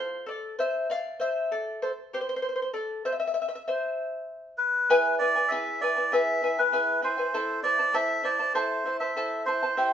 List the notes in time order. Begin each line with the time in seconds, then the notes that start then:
Already playing: F4 C5
0.26 A4 D5
0.59 C5 E5
0.90 D5 F5
1.20 C5 E5
1.52 A4 D5
1.82 A4 C5
2.13 G4 C5
2.21 C5
2.29 C5
2.36 C5
2.42 C5
2.49 C5
2.56 C5
2.62 C5
2.74 A4 D5
3.05 C5 E5
3.12 E5
3.20 E5
3.27 E5
3.34 E5
3.42 E5
3.49 E5
3.55 E5
3.68 C5 E5
4.58 B4
4.90 E4 G#4 B4 E5 G#5
5.19 E4 B4 D5 E5 G#5
5.36 E4 B4 G#5
5.48 E4 G#4 B4 E5 G#5
5.81 E4 B4 D5 E5 G#5
5.96 E4 B4 G#5
6.12 E4 G#4 B4 E5 G#5
6.42 E4 B4 E5 G#5
6.58 E4 B4 G#5
6.72 E4 G#4 B4 E5 G#5
7.02 E4 B4 C5 E5 G#5
7.18 E4 B4 G#5
7.34 E4 A4 C5 E5 A5
7.63 E4 C5 D5 E5 A5
7.79 E4 C5 A5
7.93 E4 A4 C5 E5 A5
8.23 E4 C5 D5 E5 A5
8.39 E4 C5 A5
8.54 E4 A4 C5 E5 A5
8.85 E4 C5 E5 A5
9.00 E4 C5 E5 A5
9.16 E4 A4 C5 E5 A5
9.45 E4 C5 E5 A5
9.63 E4 C5 A5
9.77 E4 G4 C5 E5 G5